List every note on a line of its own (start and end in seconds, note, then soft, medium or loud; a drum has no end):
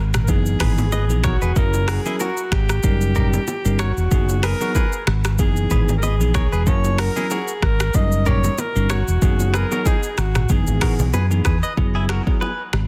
0.00 0.28 G#1 loud
0.14 finger snap medium
0.14 cross-stick loud
0.14 mid tom loud
0.14 shaker medium
0.23 0.31 A#4 medium
0.28 0.55 F#1 loud
0.28 0.58 E3 medium
0.28 0.58 B3 medium
0.28 0.58 D#4 medium
0.28 0.58 G#4 loud
0.28 0.93 G#4 loud
0.28 kick loud
0.28 low conga medium
0.28 shaker medium
0.46 shaker medium
0.60 1.10 G#1 medium
0.60 0.85 E3 medium
0.60 0.85 B3 medium
0.60 0.85 D#4 medium
0.60 0.85 G#4 medium
0.60 0.73 G#4 medium
0.60 0.72 B4 medium
0.60 finger snap medium
0.60 kick medium
0.60 cross-stick medium
0.60 mid tom medium
0.60 open hi-hat medium
0.78 low bongo medium
0.78 shaker medium
0.92 1.27 G#4 medium
0.92 1.04 B4 medium
0.92 1.04 D#5 medium
0.92 high bongo medium
0.92 low bongo medium
0.92 shaker medium
1.10 1.36 A#1 medium
1.10 1.33 E3 medium
1.10 1.33 B3 medium
1.10 1.33 D#4 medium
1.10 1.33 G#4 medium
1.10 shaker medium
1.24 1.59 F#4 medium
1.24 1.36 A#4 medium
1.24 1.36 C#5 medium
1.24 finger snap medium
1.24 kick medium
1.24 cross-stick medium
1.24 low conga medium
1.24 shaker medium
1.42 1.54 E1 medium
1.42 1.52 G#4 medium
1.42 1.51 B4 medium
1.42 shaker soft
1.56 1.97 F#1 loud
1.56 2.01 F#3 medium
1.56 2.01 C#4 medium
1.56 2.01 E4 medium
1.56 2.02 A#4 loud
1.56 1.91 A#4 loud
1.56 kick loud
1.56 low conga medium
1.56 shaker medium
1.74 high bongo medium
1.74 shaker medium
1.88 2.00 F#4 medium
1.88 2.22 G#4 medium
1.88 2.00 A#4 medium
1.88 finger snap medium
1.88 cross-stick loud
1.88 open hi-hat medium
1.88 shaker medium
2.05 2.29 F#3 medium
2.05 2.29 C#4 medium
2.05 2.29 E4 medium
2.05 2.16 E4 medium
2.05 2.15 G#4 medium
2.05 2.29 A#4 medium
2.05 low bongo medium
2.05 shaker medium
2.20 2.42 F#4 medium
2.20 2.54 F#4 loud
2.20 2.41 A#4 medium
2.20 high bongo medium
2.20 shaker medium
2.37 shaker medium
2.52 2.78 G#1 medium
2.52 3.82 G4 loud
2.52 finger snap medium
2.52 kick loud
2.52 cross-stick medium
2.69 finger snap medium
2.69 cross-stick loud
2.69 shaker medium
2.83 3.37 F#1 loud
2.83 3.13 G3 medium
2.83 3.13 C#4 medium
2.83 3.13 D#4 medium
2.83 3.14 A#4 loud
2.83 kick loud
2.83 low conga medium
2.83 shaker medium
3.01 shaker medium
3.15 3.40 G3 medium
3.15 3.40 C#4 medium
3.15 3.40 D#4 medium
3.15 3.28 G4 medium
3.15 3.27 A#4 medium
3.15 3.41 A#4 medium
3.15 kick loud
3.15 mid tom medium
3.15 shaker medium
3.33 low bongo medium
3.33 shaker medium
3.48 high bongo medium
3.48 low bongo medium
3.48 shaker medium
3.65 3.92 G1 medium
3.65 3.88 G3 medium
3.65 3.88 C#4 medium
3.65 3.88 D#4 medium
3.65 3.88 A#4 medium
3.65 shaker medium
3.79 4.44 F#4 loud
3.79 3.92 A#4 medium
3.79 3.91 C#5 medium
3.79 finger snap medium
3.79 cross-stick medium
3.79 low conga medium
3.79 shaker medium
3.97 4.09 E1 medium
3.97 shaker soft
4.11 4.52 F#1 loud
4.11 4.57 F#3 medium
4.11 4.57 B3 medium
4.11 4.57 D#4 medium
4.11 4.57 G#4 loud
4.11 kick loud
4.11 low conga medium
4.11 shaker medium
4.29 high bongo medium
4.29 shaker medium
4.43 4.55 G#4 medium
4.43 5.09 A#4 loud
4.43 4.55 B4 medium
4.43 finger snap medium
4.43 cross-stick loud
4.43 open hi-hat medium
4.43 shaker medium
4.61 4.84 F#3 medium
4.61 4.84 B3 medium
4.61 4.84 D#4 medium
4.61 4.71 F#4 medium
4.61 4.84 G#4 medium
4.61 4.70 A#4 medium
4.61 low bongo medium
4.61 shaker medium
4.75 4.97 G#4 medium
4.75 4.96 B4 medium
4.75 kick medium
4.75 high bongo medium
4.75 shaker medium
4.93 shaker medium
5.07 5.39 G#1 loud
5.07 finger snap medium
5.07 cross-stick loud
5.25 finger snap medium
5.25 cross-stick loud
5.25 shaker medium
5.38 5.66 F#1 loud
5.38 5.69 E3 medium
5.38 5.69 B3 medium
5.38 5.69 D#4 medium
5.38 5.69 G#4 loud
5.38 5.93 G#4 loud
5.38 kick medium
5.38 low conga medium
5.38 shaker medium
5.57 shaker medium
5.71 6.20 G#1 medium
5.71 5.96 E3 medium
5.71 5.96 B3 medium
5.71 5.96 D#4 medium
5.71 5.96 G#4 medium
5.71 5.83 G#4 medium
5.71 5.83 B4 medium
5.71 kick loud
5.71 mid tom medium
5.71 shaker medium
5.89 low bongo medium
5.89 shaker medium
5.98 6.06 A#4 medium
6.03 6.35 G#4 loud
6.03 6.15 B4 medium
6.03 6.15 D#5 medium
6.03 high bongo medium
6.03 low bongo medium
6.03 shaker medium
6.20 6.47 A#1 medium
6.20 6.43 E3 medium
6.20 6.44 B3 medium
6.20 6.44 D#4 medium
6.20 6.44 G#4 medium
6.20 shaker soft
6.34 6.69 G#4 loud
6.34 6.47 A#4 medium
6.34 6.46 C#5 medium
6.34 finger snap medium
6.34 kick medium
6.34 cross-stick medium
6.34 low conga medium
6.34 shaker medium
6.52 6.67 E1 medium
6.52 6.62 G#4 medium
6.52 6.62 B4 medium
6.52 shaker soft
6.67 7.08 F#1 loud
6.67 7.12 F#3 medium
6.67 7.12 C#4 medium
6.67 7.12 E4 medium
6.67 7.12 A#4 loud
6.67 7.01 C#5 loud
6.67 kick loud
6.67 low conga medium
6.67 shaker medium
6.84 high bongo medium
6.84 shaker medium
6.98 7.11 F#4 medium
6.98 7.10 A#4 medium
6.98 7.33 A#4 loud
6.98 finger snap medium
6.98 cross-stick loud
6.98 open hi-hat medium
6.98 shaker medium
7.16 7.39 F#3 medium
7.16 7.39 C#4 medium
7.16 7.39 E4 medium
7.16 7.26 E4 medium
7.16 7.26 G#4 medium
7.16 7.40 A#4 medium
7.16 low bongo medium
7.16 shaker medium
7.31 7.52 F#4 medium
7.31 7.65 G#4 loud
7.31 7.52 A#4 medium
7.31 high bongo medium
7.31 shaker medium
7.48 shaker medium
7.62 7.89 G#1 loud
7.62 7.97 A#4 loud
7.62 finger snap medium
7.62 kick loud
7.62 cross-stick loud
7.80 finger snap medium
7.80 cross-stick medium
7.80 shaker medium
7.94 8.47 F#1 loud
7.94 8.24 G3 medium
7.94 8.24 C#4 medium
7.94 8.24 D#4 medium
7.94 8.24 A#4 loud
7.94 8.29 D#5 loud
7.94 kick loud
7.94 low conga medium
7.94 shaker medium
8.12 shaker medium
8.26 8.51 G3 medium
8.26 8.51 C#4 medium
8.26 8.51 D#4 medium
8.26 8.39 G4 medium
8.26 8.38 A#4 medium
8.26 8.51 A#4 medium
8.26 8.61 C#5 loud
8.26 kick loud
8.26 mid tom loud
8.26 shaker medium
8.44 low bongo medium
8.44 shaker medium
8.58 8.93 A#4 loud
8.58 high bongo medium
8.58 low bongo medium
8.58 shaker medium
8.75 9.02 G1 medium
8.75 8.99 G3 medium
8.75 8.99 C#4 medium
8.75 8.99 D#4 medium
8.75 8.99 A#4 medium
8.75 shaker soft
8.90 9.57 F#4 loud
8.90 9.02 A#4 medium
8.90 9.02 C#5 medium
8.90 finger snap medium
8.90 cross-stick medium
8.90 low conga medium
8.90 shaker medium
9.08 9.20 E1 medium
9.08 shaker soft
9.22 9.63 F#1 loud
9.22 9.67 F#3 medium
9.22 9.67 B3 medium
9.22 9.67 D#4 medium
9.22 9.68 G#4 loud
9.22 kick loud
9.22 low conga medium
9.22 shaker medium
9.40 high bongo medium
9.40 shaker medium
9.54 9.66 G#4 medium
9.54 9.89 A#4 loud
9.54 9.66 B4 medium
9.54 finger snap medium
9.54 cross-stick loud
9.54 low bongo medium
9.54 shaker medium
9.71 9.95 F#3 medium
9.71 9.95 B3 medium
9.71 9.95 D#4 medium
9.71 9.82 F#4 medium
9.71 9.95 G#4 medium
9.71 9.81 A#4 medium
9.71 low bongo medium
9.71 shaker medium
9.86 10.08 D#4 medium
9.86 10.07 G#4 loud
9.86 10.21 G#4 loud
9.86 kick medium
9.86 high bongo medium
9.86 shaker medium
10.03 shaker medium
10.18 10.44 G#1 medium
10.18 10.52 F#4 medium
10.18 finger snap medium
10.18 cross-stick loud
10.18 shaker medium
10.35 finger snap medium
10.35 cross-stick loud
10.35 mid tom loud
10.35 shaker medium
10.49 10.64 F#1 loud
10.49 10.79 E3 medium
10.49 10.79 B3 medium
10.49 10.79 D#4 medium
10.49 10.80 G#4 loud
10.49 11.14 G#4 loud
10.49 kick loud
10.49 low conga medium
10.49 shaker medium
10.67 10.79 G#1 medium
10.67 shaker medium
10.81 11.06 E3 medium
10.81 11.06 B3 medium
10.81 11.06 D#4 medium
10.81 10.94 F#4 medium
10.81 11.07 G#4 medium
10.81 10.93 A#4 medium
10.81 finger snap medium
10.81 kick medium
10.81 cross-stick medium
10.81 mid tom loud
10.81 open hi-hat medium
10.99 11.11 B1 loud
10.99 low bongo medium
10.99 shaker medium
11.13 11.40 F#2 loud
11.13 11.26 G#4 medium
11.13 11.25 B4 medium
11.13 high bongo medium
11.13 low bongo medium
11.13 shaker medium
11.31 11.54 E3 medium
11.31 11.54 B3 medium
11.31 11.54 D#4 medium
11.31 11.54 G#4 medium
11.31 shaker soft
11.45 11.60 E2 medium
11.45 11.58 G#4 medium
11.45 11.57 B4 medium
11.45 finger snap medium
11.45 kick medium
11.45 cross-stick medium
11.45 low conga medium
11.45 shaker medium
11.63 11.73 B4 medium
11.63 11.73 D#5 medium
11.63 shaker soft
11.77 12.18 F#1 loud
11.77 12.22 F#3 medium
11.77 12.23 B3 medium
11.77 12.23 E4 medium
11.77 12.23 G#4 medium
11.77 kick loud
11.77 low conga medium
11.95 12.05 E4 medium
11.95 12.04 G#4 medium
12.09 12.21 F#4 medium
12.09 12.21 A#4 medium
12.09 finger snap medium
12.09 cross-stick loud
12.26 12.50 F#3 medium
12.26 12.50 B3 medium
12.26 12.50 E4 medium
12.26 12.50 G#4 medium
12.26 kick loud
12.26 high bongo soft
12.41 12.63 G#4 medium
12.41 12.62 B4 medium
12.41 high bongo medium
12.73 12.87 G#1 loud
12.73 finger snap medium
12.73 cross-stick medium